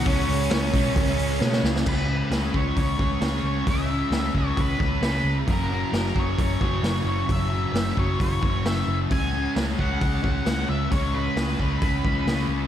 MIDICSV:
0, 0, Header, 1, 5, 480
1, 0, Start_track
1, 0, Key_signature, 4, "minor"
1, 0, Tempo, 452489
1, 64, Time_signature, 4, 2, 24, 8
1, 13442, End_track
2, 0, Start_track
2, 0, Title_t, "Lead electric guitar"
2, 0, Program_c, 0, 29
2, 73, Note_on_c, 0, 61, 83
2, 1699, Note_off_c, 0, 61, 0
2, 2004, Note_on_c, 0, 71, 75
2, 2716, Note_on_c, 0, 73, 70
2, 2729, Note_off_c, 0, 71, 0
2, 2938, Note_off_c, 0, 73, 0
2, 2950, Note_on_c, 0, 73, 84
2, 3665, Note_off_c, 0, 73, 0
2, 3677, Note_on_c, 0, 73, 74
2, 3907, Note_off_c, 0, 73, 0
2, 3911, Note_on_c, 0, 76, 89
2, 4579, Note_off_c, 0, 76, 0
2, 4647, Note_on_c, 0, 73, 76
2, 4876, Note_off_c, 0, 73, 0
2, 4885, Note_on_c, 0, 71, 85
2, 5342, Note_off_c, 0, 71, 0
2, 5355, Note_on_c, 0, 71, 77
2, 5679, Note_off_c, 0, 71, 0
2, 5842, Note_on_c, 0, 70, 83
2, 6569, Note_off_c, 0, 70, 0
2, 6571, Note_on_c, 0, 73, 78
2, 6796, Note_off_c, 0, 73, 0
2, 6809, Note_on_c, 0, 73, 84
2, 7506, Note_off_c, 0, 73, 0
2, 7519, Note_on_c, 0, 73, 86
2, 7753, Note_off_c, 0, 73, 0
2, 7765, Note_on_c, 0, 76, 88
2, 8472, Note_off_c, 0, 76, 0
2, 8476, Note_on_c, 0, 73, 79
2, 8705, Note_off_c, 0, 73, 0
2, 8718, Note_on_c, 0, 73, 96
2, 9192, Note_off_c, 0, 73, 0
2, 9196, Note_on_c, 0, 76, 80
2, 9521, Note_off_c, 0, 76, 0
2, 9674, Note_on_c, 0, 80, 82
2, 10112, Note_off_c, 0, 80, 0
2, 10401, Note_on_c, 0, 78, 92
2, 11343, Note_on_c, 0, 76, 88
2, 11378, Note_off_c, 0, 78, 0
2, 11579, Note_off_c, 0, 76, 0
2, 11584, Note_on_c, 0, 73, 77
2, 11821, Note_on_c, 0, 71, 75
2, 11828, Note_off_c, 0, 73, 0
2, 13219, Note_off_c, 0, 71, 0
2, 13442, End_track
3, 0, Start_track
3, 0, Title_t, "Distorted electric guitar"
3, 0, Program_c, 1, 30
3, 61, Note_on_c, 1, 49, 83
3, 78, Note_on_c, 1, 56, 101
3, 88, Note_on_c, 1, 61, 103
3, 518, Note_off_c, 1, 49, 0
3, 531, Note_on_c, 1, 49, 81
3, 535, Note_off_c, 1, 56, 0
3, 547, Note_on_c, 1, 56, 81
3, 548, Note_off_c, 1, 61, 0
3, 561, Note_on_c, 1, 61, 87
3, 764, Note_off_c, 1, 61, 0
3, 776, Note_on_c, 1, 61, 84
3, 798, Note_off_c, 1, 56, 0
3, 811, Note_on_c, 1, 56, 57
3, 992, Note_off_c, 1, 49, 0
3, 1005, Note_on_c, 1, 49, 90
3, 1012, Note_off_c, 1, 56, 0
3, 1025, Note_on_c, 1, 56, 97
3, 1027, Note_off_c, 1, 61, 0
3, 1040, Note_on_c, 1, 61, 95
3, 1475, Note_off_c, 1, 49, 0
3, 1487, Note_on_c, 1, 49, 74
3, 1494, Note_off_c, 1, 56, 0
3, 1507, Note_on_c, 1, 56, 82
3, 1509, Note_off_c, 1, 61, 0
3, 1522, Note_on_c, 1, 61, 82
3, 1954, Note_off_c, 1, 49, 0
3, 1966, Note_off_c, 1, 56, 0
3, 1966, Note_on_c, 1, 49, 84
3, 1974, Note_off_c, 1, 61, 0
3, 1980, Note_on_c, 1, 56, 93
3, 1995, Note_on_c, 1, 61, 94
3, 2206, Note_off_c, 1, 61, 0
3, 2210, Note_on_c, 1, 61, 65
3, 2236, Note_off_c, 1, 56, 0
3, 2240, Note_on_c, 1, 56, 60
3, 2441, Note_off_c, 1, 49, 0
3, 2446, Note_on_c, 1, 49, 64
3, 2461, Note_off_c, 1, 56, 0
3, 2466, Note_on_c, 1, 56, 70
3, 2474, Note_off_c, 1, 61, 0
3, 2478, Note_on_c, 1, 61, 75
3, 2684, Note_off_c, 1, 61, 0
3, 2688, Note_on_c, 1, 61, 62
3, 2715, Note_off_c, 1, 56, 0
3, 2719, Note_on_c, 1, 56, 58
3, 3156, Note_off_c, 1, 61, 0
3, 3160, Note_on_c, 1, 61, 62
3, 3180, Note_off_c, 1, 56, 0
3, 3192, Note_on_c, 1, 56, 55
3, 3399, Note_off_c, 1, 49, 0
3, 3403, Note_on_c, 1, 49, 66
3, 3407, Note_off_c, 1, 56, 0
3, 3420, Note_on_c, 1, 56, 69
3, 3429, Note_off_c, 1, 61, 0
3, 3433, Note_on_c, 1, 61, 78
3, 3870, Note_off_c, 1, 49, 0
3, 3883, Note_on_c, 1, 49, 84
3, 3891, Note_off_c, 1, 56, 0
3, 3903, Note_on_c, 1, 56, 92
3, 3913, Note_off_c, 1, 61, 0
3, 3917, Note_on_c, 1, 61, 92
3, 4126, Note_off_c, 1, 61, 0
3, 4130, Note_on_c, 1, 61, 72
3, 4147, Note_off_c, 1, 56, 0
3, 4160, Note_on_c, 1, 56, 63
3, 4359, Note_off_c, 1, 49, 0
3, 4372, Note_on_c, 1, 49, 69
3, 4376, Note_off_c, 1, 56, 0
3, 4389, Note_on_c, 1, 56, 72
3, 4399, Note_off_c, 1, 61, 0
3, 4403, Note_on_c, 1, 61, 89
3, 4599, Note_off_c, 1, 61, 0
3, 4603, Note_on_c, 1, 61, 63
3, 4625, Note_off_c, 1, 56, 0
3, 4638, Note_on_c, 1, 56, 60
3, 4852, Note_off_c, 1, 49, 0
3, 5077, Note_off_c, 1, 61, 0
3, 5081, Note_on_c, 1, 61, 56
3, 5095, Note_off_c, 1, 56, 0
3, 5108, Note_on_c, 1, 56, 57
3, 5318, Note_on_c, 1, 49, 78
3, 5325, Note_off_c, 1, 56, 0
3, 5338, Note_on_c, 1, 56, 73
3, 5344, Note_off_c, 1, 61, 0
3, 5349, Note_on_c, 1, 61, 72
3, 5791, Note_off_c, 1, 49, 0
3, 5799, Note_on_c, 1, 42, 82
3, 5801, Note_off_c, 1, 56, 0
3, 5818, Note_on_c, 1, 49, 101
3, 5834, Note_on_c, 1, 54, 98
3, 6032, Note_off_c, 1, 54, 0
3, 6037, Note_on_c, 1, 54, 71
3, 6058, Note_off_c, 1, 49, 0
3, 6071, Note_on_c, 1, 49, 55
3, 6268, Note_off_c, 1, 42, 0
3, 6272, Note_on_c, 1, 42, 72
3, 6282, Note_off_c, 1, 49, 0
3, 6295, Note_on_c, 1, 49, 76
3, 6306, Note_off_c, 1, 54, 0
3, 6311, Note_on_c, 1, 54, 83
3, 6516, Note_off_c, 1, 54, 0
3, 6520, Note_on_c, 1, 54, 64
3, 6537, Note_off_c, 1, 49, 0
3, 6550, Note_on_c, 1, 49, 55
3, 6997, Note_off_c, 1, 54, 0
3, 7009, Note_on_c, 1, 54, 64
3, 7029, Note_off_c, 1, 49, 0
3, 7041, Note_on_c, 1, 49, 56
3, 7237, Note_off_c, 1, 42, 0
3, 7241, Note_on_c, 1, 42, 71
3, 7243, Note_off_c, 1, 49, 0
3, 7255, Note_off_c, 1, 54, 0
3, 7256, Note_on_c, 1, 49, 69
3, 7268, Note_on_c, 1, 54, 78
3, 7707, Note_off_c, 1, 42, 0
3, 7720, Note_on_c, 1, 42, 90
3, 7725, Note_off_c, 1, 49, 0
3, 7738, Note_on_c, 1, 49, 93
3, 7741, Note_off_c, 1, 54, 0
3, 7754, Note_on_c, 1, 54, 105
3, 7952, Note_off_c, 1, 54, 0
3, 7965, Note_on_c, 1, 54, 73
3, 7985, Note_off_c, 1, 49, 0
3, 7998, Note_on_c, 1, 49, 58
3, 8182, Note_off_c, 1, 42, 0
3, 8195, Note_on_c, 1, 42, 79
3, 8203, Note_off_c, 1, 49, 0
3, 8215, Note_off_c, 1, 54, 0
3, 8216, Note_on_c, 1, 49, 76
3, 8228, Note_on_c, 1, 54, 86
3, 8425, Note_off_c, 1, 54, 0
3, 8438, Note_on_c, 1, 54, 73
3, 8458, Note_off_c, 1, 49, 0
3, 8471, Note_on_c, 1, 49, 56
3, 8685, Note_off_c, 1, 42, 0
3, 8916, Note_off_c, 1, 54, 0
3, 8929, Note_on_c, 1, 54, 64
3, 8951, Note_off_c, 1, 49, 0
3, 8964, Note_on_c, 1, 49, 52
3, 9061, Note_off_c, 1, 61, 0
3, 9177, Note_on_c, 1, 42, 62
3, 9179, Note_off_c, 1, 49, 0
3, 9191, Note_off_c, 1, 54, 0
3, 9192, Note_on_c, 1, 49, 70
3, 9204, Note_on_c, 1, 54, 66
3, 9642, Note_off_c, 1, 42, 0
3, 9642, Note_off_c, 1, 49, 0
3, 9655, Note_off_c, 1, 54, 0
3, 9655, Note_on_c, 1, 49, 83
3, 9674, Note_on_c, 1, 56, 87
3, 9686, Note_on_c, 1, 61, 95
3, 9894, Note_off_c, 1, 61, 0
3, 9898, Note_on_c, 1, 61, 71
3, 9926, Note_off_c, 1, 56, 0
3, 9930, Note_on_c, 1, 56, 54
3, 10138, Note_off_c, 1, 49, 0
3, 10143, Note_on_c, 1, 49, 63
3, 10160, Note_off_c, 1, 56, 0
3, 10164, Note_on_c, 1, 56, 73
3, 10176, Note_off_c, 1, 61, 0
3, 10180, Note_on_c, 1, 61, 75
3, 10374, Note_off_c, 1, 61, 0
3, 10378, Note_on_c, 1, 61, 70
3, 10413, Note_off_c, 1, 56, 0
3, 10417, Note_on_c, 1, 56, 55
3, 10846, Note_off_c, 1, 61, 0
3, 10850, Note_on_c, 1, 61, 67
3, 10874, Note_off_c, 1, 56, 0
3, 10887, Note_on_c, 1, 56, 57
3, 11085, Note_off_c, 1, 49, 0
3, 11089, Note_on_c, 1, 49, 58
3, 11092, Note_off_c, 1, 56, 0
3, 11105, Note_on_c, 1, 56, 69
3, 11118, Note_off_c, 1, 61, 0
3, 11122, Note_on_c, 1, 61, 76
3, 11554, Note_off_c, 1, 49, 0
3, 11567, Note_on_c, 1, 49, 86
3, 11577, Note_off_c, 1, 56, 0
3, 11590, Note_on_c, 1, 56, 92
3, 11600, Note_off_c, 1, 61, 0
3, 11605, Note_on_c, 1, 61, 89
3, 11813, Note_off_c, 1, 61, 0
3, 11818, Note_on_c, 1, 61, 63
3, 11841, Note_off_c, 1, 56, 0
3, 11853, Note_on_c, 1, 56, 56
3, 12049, Note_off_c, 1, 49, 0
3, 12062, Note_on_c, 1, 49, 73
3, 12067, Note_off_c, 1, 56, 0
3, 12080, Note_on_c, 1, 56, 75
3, 12089, Note_off_c, 1, 61, 0
3, 12093, Note_on_c, 1, 61, 68
3, 12297, Note_off_c, 1, 61, 0
3, 12301, Note_on_c, 1, 61, 75
3, 12319, Note_off_c, 1, 56, 0
3, 12331, Note_on_c, 1, 56, 55
3, 12541, Note_off_c, 1, 49, 0
3, 12766, Note_off_c, 1, 61, 0
3, 12778, Note_on_c, 1, 61, 72
3, 12797, Note_off_c, 1, 56, 0
3, 12810, Note_on_c, 1, 56, 49
3, 13017, Note_on_c, 1, 49, 74
3, 13024, Note_off_c, 1, 56, 0
3, 13034, Note_off_c, 1, 61, 0
3, 13036, Note_on_c, 1, 56, 66
3, 13046, Note_on_c, 1, 61, 75
3, 13442, Note_off_c, 1, 49, 0
3, 13442, Note_off_c, 1, 56, 0
3, 13442, Note_off_c, 1, 61, 0
3, 13442, End_track
4, 0, Start_track
4, 0, Title_t, "Picked electric bass"
4, 0, Program_c, 2, 34
4, 60, Note_on_c, 2, 37, 91
4, 265, Note_off_c, 2, 37, 0
4, 304, Note_on_c, 2, 37, 90
4, 507, Note_off_c, 2, 37, 0
4, 541, Note_on_c, 2, 37, 84
4, 744, Note_off_c, 2, 37, 0
4, 782, Note_on_c, 2, 35, 88
4, 985, Note_off_c, 2, 35, 0
4, 1019, Note_on_c, 2, 37, 91
4, 1223, Note_off_c, 2, 37, 0
4, 1262, Note_on_c, 2, 37, 84
4, 1464, Note_off_c, 2, 37, 0
4, 1497, Note_on_c, 2, 47, 93
4, 1700, Note_off_c, 2, 47, 0
4, 1728, Note_on_c, 2, 37, 92
4, 1935, Note_off_c, 2, 37, 0
4, 1974, Note_on_c, 2, 37, 79
4, 2347, Note_off_c, 2, 37, 0
4, 2444, Note_on_c, 2, 37, 78
4, 2634, Note_off_c, 2, 37, 0
4, 2696, Note_on_c, 2, 37, 76
4, 2881, Note_off_c, 2, 37, 0
4, 2933, Note_on_c, 2, 37, 82
4, 3119, Note_off_c, 2, 37, 0
4, 3171, Note_on_c, 2, 37, 73
4, 3358, Note_off_c, 2, 37, 0
4, 3403, Note_on_c, 2, 37, 79
4, 3593, Note_off_c, 2, 37, 0
4, 3637, Note_on_c, 2, 37, 84
4, 3830, Note_off_c, 2, 37, 0
4, 3892, Note_on_c, 2, 37, 77
4, 4265, Note_off_c, 2, 37, 0
4, 4354, Note_on_c, 2, 37, 82
4, 4548, Note_off_c, 2, 37, 0
4, 4610, Note_on_c, 2, 37, 72
4, 4798, Note_off_c, 2, 37, 0
4, 4846, Note_on_c, 2, 37, 80
4, 5035, Note_off_c, 2, 37, 0
4, 5091, Note_on_c, 2, 37, 75
4, 5278, Note_off_c, 2, 37, 0
4, 5315, Note_on_c, 2, 37, 91
4, 5508, Note_off_c, 2, 37, 0
4, 5554, Note_on_c, 2, 37, 82
4, 5748, Note_off_c, 2, 37, 0
4, 5808, Note_on_c, 2, 30, 75
4, 6183, Note_off_c, 2, 30, 0
4, 6288, Note_on_c, 2, 30, 92
4, 6477, Note_off_c, 2, 30, 0
4, 6533, Note_on_c, 2, 30, 77
4, 6719, Note_off_c, 2, 30, 0
4, 6775, Note_on_c, 2, 30, 80
4, 6961, Note_off_c, 2, 30, 0
4, 7012, Note_on_c, 2, 30, 73
4, 7199, Note_off_c, 2, 30, 0
4, 7233, Note_on_c, 2, 30, 84
4, 7427, Note_off_c, 2, 30, 0
4, 7475, Note_on_c, 2, 30, 95
4, 7669, Note_off_c, 2, 30, 0
4, 7733, Note_on_c, 2, 30, 86
4, 8107, Note_off_c, 2, 30, 0
4, 8196, Note_on_c, 2, 30, 78
4, 8390, Note_off_c, 2, 30, 0
4, 8457, Note_on_c, 2, 30, 71
4, 8642, Note_off_c, 2, 30, 0
4, 8700, Note_on_c, 2, 30, 79
4, 8884, Note_off_c, 2, 30, 0
4, 8938, Note_on_c, 2, 30, 74
4, 9123, Note_off_c, 2, 30, 0
4, 9162, Note_on_c, 2, 30, 93
4, 9354, Note_off_c, 2, 30, 0
4, 9407, Note_on_c, 2, 30, 89
4, 9597, Note_off_c, 2, 30, 0
4, 9667, Note_on_c, 2, 37, 72
4, 10036, Note_off_c, 2, 37, 0
4, 10140, Note_on_c, 2, 37, 81
4, 10325, Note_off_c, 2, 37, 0
4, 10385, Note_on_c, 2, 37, 79
4, 10568, Note_off_c, 2, 37, 0
4, 10617, Note_on_c, 2, 37, 80
4, 10803, Note_off_c, 2, 37, 0
4, 10858, Note_on_c, 2, 37, 71
4, 11044, Note_off_c, 2, 37, 0
4, 11098, Note_on_c, 2, 37, 80
4, 11284, Note_off_c, 2, 37, 0
4, 11338, Note_on_c, 2, 37, 89
4, 11525, Note_off_c, 2, 37, 0
4, 11584, Note_on_c, 2, 37, 82
4, 11955, Note_off_c, 2, 37, 0
4, 12053, Note_on_c, 2, 37, 93
4, 12242, Note_off_c, 2, 37, 0
4, 12297, Note_on_c, 2, 37, 72
4, 12484, Note_off_c, 2, 37, 0
4, 12537, Note_on_c, 2, 37, 87
4, 12724, Note_off_c, 2, 37, 0
4, 12777, Note_on_c, 2, 37, 69
4, 12964, Note_off_c, 2, 37, 0
4, 13001, Note_on_c, 2, 37, 86
4, 13195, Note_off_c, 2, 37, 0
4, 13238, Note_on_c, 2, 37, 91
4, 13433, Note_off_c, 2, 37, 0
4, 13442, End_track
5, 0, Start_track
5, 0, Title_t, "Drums"
5, 60, Note_on_c, 9, 46, 92
5, 65, Note_on_c, 9, 36, 118
5, 166, Note_off_c, 9, 46, 0
5, 171, Note_off_c, 9, 36, 0
5, 304, Note_on_c, 9, 46, 71
5, 410, Note_off_c, 9, 46, 0
5, 541, Note_on_c, 9, 38, 125
5, 541, Note_on_c, 9, 46, 88
5, 647, Note_off_c, 9, 38, 0
5, 647, Note_off_c, 9, 46, 0
5, 779, Note_on_c, 9, 46, 67
5, 781, Note_on_c, 9, 36, 79
5, 885, Note_off_c, 9, 46, 0
5, 887, Note_off_c, 9, 36, 0
5, 1020, Note_on_c, 9, 36, 115
5, 1022, Note_on_c, 9, 46, 85
5, 1126, Note_off_c, 9, 36, 0
5, 1128, Note_off_c, 9, 46, 0
5, 1260, Note_on_c, 9, 46, 62
5, 1366, Note_off_c, 9, 46, 0
5, 1497, Note_on_c, 9, 38, 64
5, 1603, Note_off_c, 9, 38, 0
5, 1620, Note_on_c, 9, 38, 73
5, 1726, Note_off_c, 9, 38, 0
5, 1746, Note_on_c, 9, 38, 90
5, 1853, Note_off_c, 9, 38, 0
5, 1866, Note_on_c, 9, 38, 96
5, 1972, Note_off_c, 9, 38, 0
5, 1977, Note_on_c, 9, 36, 110
5, 1978, Note_on_c, 9, 49, 93
5, 2083, Note_off_c, 9, 36, 0
5, 2084, Note_off_c, 9, 49, 0
5, 2457, Note_on_c, 9, 38, 103
5, 2457, Note_on_c, 9, 46, 52
5, 2563, Note_off_c, 9, 38, 0
5, 2563, Note_off_c, 9, 46, 0
5, 2698, Note_on_c, 9, 36, 70
5, 2804, Note_off_c, 9, 36, 0
5, 2936, Note_on_c, 9, 36, 99
5, 2937, Note_on_c, 9, 46, 47
5, 3042, Note_off_c, 9, 36, 0
5, 3043, Note_off_c, 9, 46, 0
5, 3175, Note_on_c, 9, 36, 83
5, 3281, Note_off_c, 9, 36, 0
5, 3411, Note_on_c, 9, 38, 102
5, 3411, Note_on_c, 9, 46, 53
5, 3517, Note_off_c, 9, 38, 0
5, 3517, Note_off_c, 9, 46, 0
5, 3892, Note_on_c, 9, 46, 52
5, 3893, Note_on_c, 9, 36, 97
5, 3998, Note_off_c, 9, 46, 0
5, 3999, Note_off_c, 9, 36, 0
5, 4373, Note_on_c, 9, 38, 98
5, 4373, Note_on_c, 9, 46, 43
5, 4479, Note_off_c, 9, 38, 0
5, 4479, Note_off_c, 9, 46, 0
5, 4612, Note_on_c, 9, 36, 65
5, 4719, Note_off_c, 9, 36, 0
5, 4850, Note_on_c, 9, 46, 49
5, 4851, Note_on_c, 9, 36, 102
5, 4956, Note_off_c, 9, 46, 0
5, 4958, Note_off_c, 9, 36, 0
5, 5093, Note_on_c, 9, 36, 88
5, 5199, Note_off_c, 9, 36, 0
5, 5332, Note_on_c, 9, 38, 107
5, 5332, Note_on_c, 9, 46, 45
5, 5438, Note_off_c, 9, 38, 0
5, 5438, Note_off_c, 9, 46, 0
5, 5807, Note_on_c, 9, 46, 44
5, 5810, Note_on_c, 9, 36, 103
5, 5913, Note_off_c, 9, 46, 0
5, 5916, Note_off_c, 9, 36, 0
5, 6297, Note_on_c, 9, 38, 98
5, 6297, Note_on_c, 9, 46, 47
5, 6403, Note_off_c, 9, 38, 0
5, 6403, Note_off_c, 9, 46, 0
5, 6532, Note_on_c, 9, 36, 69
5, 6638, Note_off_c, 9, 36, 0
5, 6774, Note_on_c, 9, 36, 109
5, 6775, Note_on_c, 9, 46, 49
5, 6880, Note_off_c, 9, 36, 0
5, 6881, Note_off_c, 9, 46, 0
5, 7012, Note_on_c, 9, 36, 78
5, 7118, Note_off_c, 9, 36, 0
5, 7256, Note_on_c, 9, 38, 102
5, 7256, Note_on_c, 9, 46, 52
5, 7362, Note_off_c, 9, 38, 0
5, 7362, Note_off_c, 9, 46, 0
5, 7735, Note_on_c, 9, 36, 94
5, 7738, Note_on_c, 9, 46, 48
5, 7841, Note_off_c, 9, 36, 0
5, 7844, Note_off_c, 9, 46, 0
5, 8225, Note_on_c, 9, 38, 93
5, 8225, Note_on_c, 9, 46, 54
5, 8331, Note_off_c, 9, 38, 0
5, 8331, Note_off_c, 9, 46, 0
5, 8458, Note_on_c, 9, 36, 67
5, 8564, Note_off_c, 9, 36, 0
5, 8699, Note_on_c, 9, 36, 97
5, 8705, Note_on_c, 9, 46, 51
5, 8805, Note_off_c, 9, 36, 0
5, 8811, Note_off_c, 9, 46, 0
5, 8939, Note_on_c, 9, 36, 80
5, 9046, Note_off_c, 9, 36, 0
5, 9184, Note_on_c, 9, 38, 108
5, 9184, Note_on_c, 9, 46, 49
5, 9290, Note_off_c, 9, 38, 0
5, 9290, Note_off_c, 9, 46, 0
5, 9663, Note_on_c, 9, 36, 98
5, 9665, Note_on_c, 9, 46, 47
5, 9769, Note_off_c, 9, 36, 0
5, 9771, Note_off_c, 9, 46, 0
5, 10146, Note_on_c, 9, 38, 112
5, 10146, Note_on_c, 9, 46, 46
5, 10252, Note_off_c, 9, 38, 0
5, 10252, Note_off_c, 9, 46, 0
5, 10386, Note_on_c, 9, 36, 64
5, 10492, Note_off_c, 9, 36, 0
5, 10624, Note_on_c, 9, 36, 110
5, 10625, Note_on_c, 9, 46, 45
5, 10730, Note_off_c, 9, 36, 0
5, 10731, Note_off_c, 9, 46, 0
5, 10862, Note_on_c, 9, 36, 88
5, 10968, Note_off_c, 9, 36, 0
5, 11099, Note_on_c, 9, 38, 97
5, 11099, Note_on_c, 9, 46, 49
5, 11205, Note_off_c, 9, 38, 0
5, 11205, Note_off_c, 9, 46, 0
5, 11580, Note_on_c, 9, 46, 50
5, 11581, Note_on_c, 9, 36, 100
5, 11687, Note_off_c, 9, 36, 0
5, 11687, Note_off_c, 9, 46, 0
5, 12061, Note_on_c, 9, 38, 112
5, 12061, Note_on_c, 9, 46, 52
5, 12167, Note_off_c, 9, 38, 0
5, 12167, Note_off_c, 9, 46, 0
5, 12300, Note_on_c, 9, 36, 62
5, 12406, Note_off_c, 9, 36, 0
5, 12533, Note_on_c, 9, 46, 51
5, 12538, Note_on_c, 9, 36, 114
5, 12639, Note_off_c, 9, 46, 0
5, 12644, Note_off_c, 9, 36, 0
5, 12778, Note_on_c, 9, 36, 84
5, 12884, Note_off_c, 9, 36, 0
5, 13021, Note_on_c, 9, 38, 91
5, 13021, Note_on_c, 9, 46, 43
5, 13127, Note_off_c, 9, 38, 0
5, 13127, Note_off_c, 9, 46, 0
5, 13442, End_track
0, 0, End_of_file